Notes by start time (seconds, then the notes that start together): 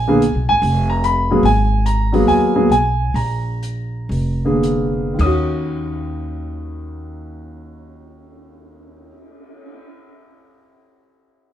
Already playing: A#1 G#5
0.08 D3 A#3 B3 G#4
0.22 closed hi-hat
0.35 B1
0.49 G#1 G#5
0.62 F1, open hi-hat
0.90 A#5
1.04 B5, closed hi-hat
1.31 F#3 A#3 B3 G#4
1.43 G#1 G#5, open hi-hat
1.86 A#5, closed hi-hat
2.12 F#3 A#3 B3 G#4, open hi-hat
2.27 D#2 G#5, open hi-hat
2.55 F#3 A#3 B3 G#4
2.69 B1 G#5, closed hi-hat
3.14 A#1 A#5, open hi-hat
3.63 closed hi-hat
4.09 F1, open hi-hat
4.45 D3 A#3 B3 G#4
4.63 closed hi-hat
5.13 D#2 D#3
5.19 D#2 C#4 D#6, kick, crash
5.25 F#4
5.57 cymbal swell